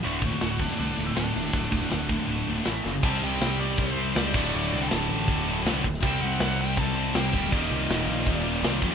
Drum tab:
CC |----------------|----------------|x-------------x-|----------------|
HH |o---o---o---o---|o---o---o---o---|----o---o---o---|----o---o---o---|
SD |----o--o----o---|-o--o-------o-o-|----o-------o--o|----o-------o--o|
BD |--o---o---------|o-o---o---------|o-------o-----o-|--------o-----o-|

CC |----------------|----------------|
HH |o---o---o---o---|o---o---o---o---|
SD |----o-------o--o|----o------oo---|
BD |o-------o-----o-|o-------o-----o-|